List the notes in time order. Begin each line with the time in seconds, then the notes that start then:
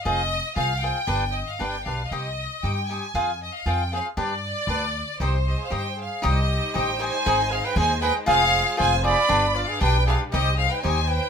0.04 F1 F4 G#4 C5 D#5 F5
0.56 C2 F4 G#4 C5 F5
0.82 F4 G#4 C5 F5 G5
1.07 G1 D4 G4 B4 D5
1.33 D#5
1.47 F5
1.59 G1 D4 G4 B4 D5 G5
1.86 B1 D4 G4 B4 D5 F5
2.11 C2 D#4 G4 C5 D#5
2.63 G2 D#4 G4 C5 D#5 G5
2.89 D#4 G4 C5 D#5 G#5
3.14 F2 F4 G#4 C5 F5
3.43 D#5
3.54 F5
3.66 F2 F4 G#4 C5 F5 G5
3.92 F4 G#4 C5 F5
4.17 G2 D4 G4 B4 D5
4.67 D2 D4 G4 B4 D5
5.20 C2 D#4 G4 C5 D#5
5.47 G4 D#5
5.58 G#4 F5
5.70 G2 D#4 G4 C5 D#5
5.76 G5
5.96 G#4
6.02 F5
6.22 C2 G3 D#4 G4 C5 D#5
6.28 D#5
6.74 A1 D#4 G4 C5 D#5 G5
6.99 D#4 G4 C5 D#5 G#5
7.25 G#1 G#3 D#4 G#4 C5 D#5
7.52 G#4 F5
7.65 B4 G5
7.76 D#2 D#4 G#4 C5 D#5 G#5
8.01 D#4 G#4 B4 C5 D#5 G5
8.26 F1 F4 G#4 C5 F5
8.77 F1 F4 G#4 C5 F5 G#5
9.03 F4 G#4 C5 D5 F5 B5
9.29 G1 G3 D4 G4 B4 D5
9.55 F4 D5
9.68 G#4 F5
9.81 B1 D4 G4 B4 D5 G5
10.07 D4 G4 G#4 B4 D5 F5
10.31 C2 D#4 G4 C5 D#5
10.57 G#4 F5
10.70 B4 G5
10.83 D#2 D#4 G4 C5 D#5 G#5
11.08 B4 G5